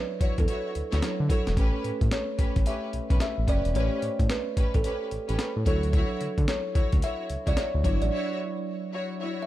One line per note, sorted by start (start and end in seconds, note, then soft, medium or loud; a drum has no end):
0.00 0.98 F#3 medium
0.00 0.99 D4 medium
0.00 0.99 E4 medium
0.00 0.36 B4 medium
0.00 0.99 C#5 medium
0.20 0.28 E2 soft
0.20 0.41 E4 medium
0.20 0.41 F#4 medium
0.20 0.41 C#5 medium
0.20 kick medium
0.20 closed hi-hat medium
0.38 0.46 E2 medium
0.38 1.27 A4 medium
0.38 kick loud
0.38 closed hi-hat soft
0.47 0.68 E4 medium
0.47 0.68 F#4 medium
0.47 0.68 C#5 medium
0.47 closed hi-hat medium
0.75 0.82 D2 soft
0.75 closed hi-hat medium
0.92 1.01 D2 medium
0.92 1.07 E4 medium
0.92 1.07 F#4 medium
0.92 1.08 C#5 medium
0.92 snare medium
0.92 closed hi-hat medium
1.02 1.57 F#3 medium
1.02 1.57 D4 medium
1.02 1.57 E4 soft
1.02 1.57 C#5 medium
1.02 snare loud
1.02 closed hi-hat medium
1.20 1.28 D3 loud
1.29 1.50 E4 medium
1.29 1.50 F#4 medium
1.29 1.81 A4 medium
1.29 1.50 C#5 medium
1.29 kick medium
1.29 closed hi-hat medium
1.47 1.55 E1 medium
1.47 snare medium
1.47 closed hi-hat medium
1.56 1.71 A1 loud
1.56 3.71 A3 medium
1.56 1.82 C#4 loud
1.56 3.71 C#4 medium
1.56 1.83 G4 medium
1.56 3.72 G4 medium
1.56 1.83 B4 loud
1.56 3.72 B4 medium
1.56 kick loud
1.56 closed hi-hat medium
1.84 1.91 A2 soft
1.84 closed hi-hat medium
2.01 2.09 A2 medium
2.01 kick medium
2.01 closed hi-hat soft
2.11 2.63 C#5 medium
2.11 snare loud
2.11 closed hi-hat medium
2.38 2.46 A1 medium
2.38 2.59 C#4 medium
2.38 2.59 G4 medium
2.38 2.59 B4 medium
2.38 kick medium
2.38 closed hi-hat medium
2.56 2.64 A1 medium
2.56 kick loud
2.56 closed hi-hat soft
2.65 2.86 C#4 medium
2.65 2.86 G4 medium
2.65 2.86 B4 medium
2.65 3.20 E5 medium
2.65 closed hi-hat medium
2.93 3.00 B1 soft
2.93 closed hi-hat medium
3.10 3.19 B1 medium
3.10 3.25 C#4 medium
3.10 3.26 G4 medium
3.10 3.26 B4 medium
3.10 kick medium
3.10 closed hi-hat medium
3.20 3.49 E5 loud
3.20 snare loud
3.20 closed hi-hat medium
3.38 3.46 A1 medium
3.47 3.62 F#1 medium
3.47 3.68 C#4 medium
3.47 3.68 G4 medium
3.47 3.68 B4 medium
3.47 3.61 D5 loud
3.47 kick medium
3.47 closed hi-hat medium
3.65 3.73 E1 medium
3.65 closed hi-hat soft
3.75 3.89 A1 loud
3.75 5.62 A3 medium
3.75 4.01 C#4 loud
3.75 5.62 C#4 medium
3.75 4.01 G4 medium
3.75 5.63 G4 medium
3.75 4.01 B4 loud
3.75 3.84 C5 medium
3.75 4.32 C#5 loud
3.75 closed hi-hat medium
3.83 5.66 C#5 medium
4.02 4.09 A2 medium
4.02 closed hi-hat medium
4.19 4.28 A2 medium
4.19 kick medium
4.19 closed hi-hat soft
4.30 4.76 B4 medium
4.30 snare loud
4.30 closed hi-hat medium
4.57 4.64 A1 soft
4.57 4.77 C#4 medium
4.57 4.77 G4 medium
4.57 4.77 B4 medium
4.57 kick medium
4.57 closed hi-hat medium
4.74 4.83 A1 medium
4.74 5.66 A4 medium
4.74 kick medium
4.74 closed hi-hat soft
4.84 5.04 C#4 medium
4.84 5.05 G4 medium
4.84 5.05 B4 medium
4.84 closed hi-hat medium
5.11 5.19 A1 soft
5.11 closed hi-hat medium
5.28 5.37 A1 medium
5.28 5.44 C#4 medium
5.28 5.44 G4 medium
5.28 5.44 B4 medium
5.28 closed hi-hat medium
5.39 snare loud
5.39 closed hi-hat medium
5.56 5.64 A2 loud
5.65 6.02 D2 medium
5.65 7.80 F#3 medium
5.65 7.80 D4 medium
5.65 5.86 E4 medium
5.65 7.81 E4 medium
5.65 5.86 F#4 medium
5.65 6.51 A4 medium
5.65 5.87 C#5 medium
5.65 7.81 C#5 medium
5.65 kick medium
5.65 closed hi-hat medium
5.83 closed hi-hat soft
5.93 6.19 E4 loud
5.93 6.19 F#4 medium
5.93 6.19 C#5 loud
5.93 kick loud
5.93 closed hi-hat medium
6.21 6.28 D3 soft
6.21 closed hi-hat medium
6.38 6.46 D3 medium
6.38 kick medium
6.38 closed hi-hat medium
6.48 7.04 C#5 medium
6.48 snare loud
6.48 closed hi-hat medium
6.75 6.82 D2 soft
6.75 6.95 E4 medium
6.75 6.96 F#4 medium
6.75 6.96 C#5 medium
6.75 kick loud
6.75 closed hi-hat medium
6.92 7.01 D2 medium
6.92 kick medium
6.92 closed hi-hat soft
7.02 7.23 E4 medium
7.02 7.23 F#4 medium
7.02 7.23 C#5 medium
7.02 7.49 E5 loud
7.02 closed hi-hat medium
7.30 7.37 C#2 soft
7.30 closed hi-hat medium
7.47 7.55 C#2 medium
7.47 7.62 E4 medium
7.47 7.62 F#4 medium
7.47 7.62 C#5 medium
7.47 7.57 D5 medium
7.47 kick medium
7.47 closed hi-hat medium
7.57 8.03 C#5 medium
7.57 snare loud
7.57 closed hi-hat medium
7.74 7.82 D2 medium
7.83 7.98 G1 medium
7.83 9.46 F#3 medium
7.83 9.46 D4 medium
7.83 8.04 E4 medium
7.83 9.46 E4 medium
7.83 8.05 F#4 medium
7.83 8.05 C#5 medium
7.83 9.46 D5 medium
7.83 kick medium
7.83 closed hi-hat medium
8.02 8.10 A1 medium
8.02 9.37 D5 medium
8.02 closed hi-hat soft
8.11 8.37 E4 medium
8.11 8.37 F#4 medium
8.11 8.38 C#5 loud
8.93 9.13 E4 medium
8.93 9.14 F#4 medium
8.93 9.14 C#5 medium
9.20 9.41 E4 medium
9.20 9.41 F#4 medium
9.20 9.41 C#5 medium
9.42 9.46 E5 medium